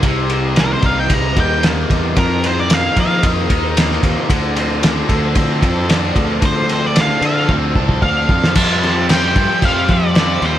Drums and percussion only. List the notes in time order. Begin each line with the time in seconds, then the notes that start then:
0.03 kick, ride
0.30 ride
0.56 snare, ride
0.82 kick, ride
1.10 kick, ride
1.36 kick, ride
1.63 snare, ride
1.90 kick, ride
2.16 kick, ride
2.44 ride
2.70 snare, ride
2.96 kick, ride
3.23 kick, ride
3.50 kick, ride
3.77 snare, ride
3.92 snare
4.03 kick, ride
4.30 kick, ride
4.56 ride
4.83 snare, ride
5.09 kick, ride
5.35 kick, ride
5.62 kick, ride
5.89 snare, ride
6.16 kick, ride
6.42 kick, ride
6.69 ride
6.96 snare, ride
7.22 ride
7.49 kick
7.76 kick
7.89 kick
8.02 kick
8.29 kick
8.44 snare
8.55 kick, crash
8.83 snare, crash
9.09 snare, crash
9.36 kick, crash
9.62 kick, crash
9.88 kick, crash
10.15 snare, crash
10.42 crash